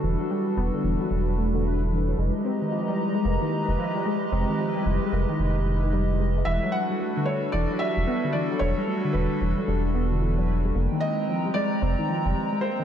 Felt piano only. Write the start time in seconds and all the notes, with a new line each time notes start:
6.45 E5
6.72 F#5
7.25 C#5
7.52 D5
7.79 E5
8.33 D5
8.59 C#5
9.13 B4
11.00 D#5
11.54 D5
12.61 C5